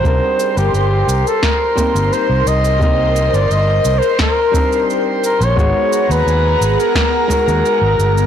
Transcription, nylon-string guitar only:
0.03 G3 C4 D4 D#4 A#4
1.75 G3 A#3 C4 D#4
1.80 A#4
2.79 G3 A#3 C4 D#4
2.84 A#4
4.52 G3 C4 D4 D#4
4.56 A#4
5.56 G#3 B3 D#4 F#4
5.60 G#4
7.28 G#3 B3 D#4 F#4
7.32 A#4

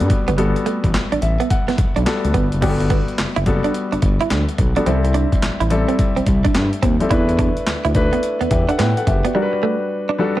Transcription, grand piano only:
Already playing: G3 B3 F#4 A4
0.38 G3 B3 F#4 A4
1.22 E5
1.50 F#5
2.06 G3 B3 F#4 A4 A5
2.62 G3 B3 F#4 G4
2.69 A4
3.46 G3 B3 F#4 A4
4.76 G3 B3 F#4 A4
4.86 G3 C4 E4 A4
5.70 G3 C4 E4 A4
7.00 G3 C4 E4 A4
7.10 A3 D4 E4 B4
7.95 A3 D4 E4 B4
8.51 G4 E5
8.69 A4 F#5
8.79 B4 G5
8.97 A4 F#5
9.07 G4 E5
9.25 F#4 D5
9.34 G3 D4 F#4 A#4
9.42 B4
10.19 G3 D4 F#4 A4

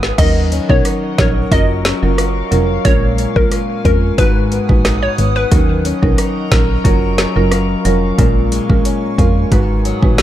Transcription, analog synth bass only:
Already playing: G#1
0.19 D#2
0.70 B1
1.18 A#1
1.52 F#1
2.03 F#1
2.52 F1
2.85 A#1
3.36 A#1
3.85 F2
4.18 G#1
4.69 A#1
5.18 G#1
5.52 D#2
6.03 B1
6.52 A#1
6.85 F#1
7.36 F#1
7.85 F1
8.19 A#1
8.70 A#1
9.18 F2
9.52 G#1
10.03 A#1

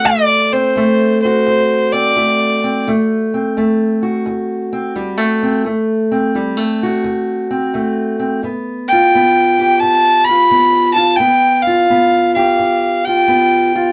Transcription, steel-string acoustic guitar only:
Already playing: F#4
0.04 D2 A3
0.53 C4
0.76 D2 A3
1.25 F#4
1.47 D2
1.93 C4
2.16 D2 A3
2.64 C4
2.87 D2 A3
3.34 C4
3.57 D2 A3
4.03 F#4
4.26 D2
4.73 C4
4.95 D2 G3
5.17 A3
5.43 C4
5.64 D2 A3
6.12 C4
6.35 D2 G3
6.57 A3
6.83 F#4
7.04 D2
7.51 C4
7.74 D2 A3
8.20 C4
8.43 G2 B3
8.92 F4
9.14 G2 B3
9.59 G4
9.82 G2
10.29 F4
10.50 G2 B3
10.96 F4
11.19 G2 B3
11.67 F4
11.90 G2 B3
12.36 G4
12.59 G2
13.07 F4
13.28 G2 B3
13.75 F4

